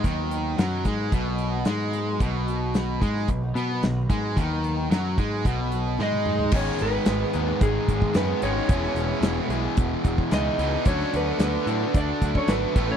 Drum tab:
CC |----------------|----------------|----------------|x---------------|
HH |x-x-x-x-x-x-x-x-|x-x-x-x-x-x-x-x-|x-x-x-x-x-x-----|--x-x-x-x-x-x-x-|
SD |----o-------o---|----o--o----o---|----o-------o---|----o-------o---|
T1 |----------------|----------------|-------------o--|----------------|
T2 |----------------|----------------|--------------o-|----------------|
FT |----------------|----------------|---------------o|----------------|
BD |o-----o-o-------|o-----o-o-----o-|o-----o-o-------|o-------o-oo----|

CC |----------------|----------------|
HH |x-x-x-x-x-x-x-x-|x-x-x-x-x-x-x-x-|
SD |-o--o-------o---|-o--o-------o---|
T1 |----------------|----------------|
T2 |----------------|----------------|
FT |----------------|----------------|
BD |o-------o-oo----|o-------o-oo--o-|